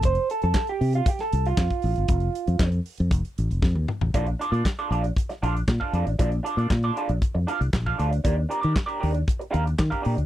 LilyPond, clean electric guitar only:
\new Staff \with { instrumentName = "Clean electric guitar" } { \time 4/4 \key bes \major \tempo 4 = 117 c''8 a'16 a'8 g'8 f'16 g'16 a'8 f'4~ f'16~ | f'4~ f'16 r2 r8. | <d' f' a' d''>16 r16 <d' f' a' d''>16 <d' f' a' d''>16 r16 <d' f' a' d''>16 <d' f' a' d''>16 r8. <d' f' a' f''>16 r8 <d' f' a' f''>16 <d' f' a' d''>16 r16 | <d' f' a' d''>16 r16 <d' f' a' d''>16 <d' f' a' d''>16 r16 <d' f' a' d''>16 <d' f' a' d''>16 r8. <d' f' a' f''>16 r8 <d' f' a' f''>16 <d' f' a' d''>16 r16 |
<d' g' bes' d''>16 r16 <d' g' bes' d''>16 <d' g' bes' d''>16 r16 <d' g' bes' d''>16 <d' g' bes' d''>16 r8. <d' g' bes' f''>16 r8 <d' g' bes' f''>16 <d' g' bes' d''>16 r16 | }